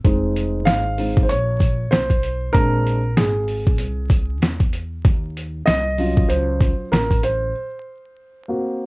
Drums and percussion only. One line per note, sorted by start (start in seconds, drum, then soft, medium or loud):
0.05 kick loud
0.05 closed hi-hat medium
0.37 closed hi-hat medium
0.67 snare loud
0.67 closed hi-hat medium
0.98 open hi-hat soft
1.17 kick medium
1.29 closed hi-hat medium
1.60 kick medium
1.60 closed hi-hat medium
1.92 snare loud
1.92 closed hi-hat medium
2.10 kick medium
2.10 closed hi-hat medium
2.23 closed hi-hat medium
2.54 kick loud
2.54 closed hi-hat medium
2.87 closed hi-hat medium
3.17 snare medium
3.17 closed hi-hat medium
3.48 open hi-hat soft
3.67 kick medium
3.78 closed hi-hat medium
4.10 kick medium
4.10 closed hi-hat medium
4.42 snare loud
4.42 closed hi-hat medium
4.60 kick medium
4.60 closed hi-hat medium
4.73 closed hi-hat medium
5.05 kick loud
5.05 closed hi-hat medium
5.37 closed hi-hat medium
5.67 snare loud
5.67 closed hi-hat medium
5.98 open hi-hat soft
6.17 kick loud
6.30 closed hi-hat medium
6.60 kick medium
6.60 closed hi-hat medium
6.93 snare loud
6.93 closed hi-hat medium
7.11 kick medium
7.11 closed hi-hat medium
7.23 closed hi-hat medium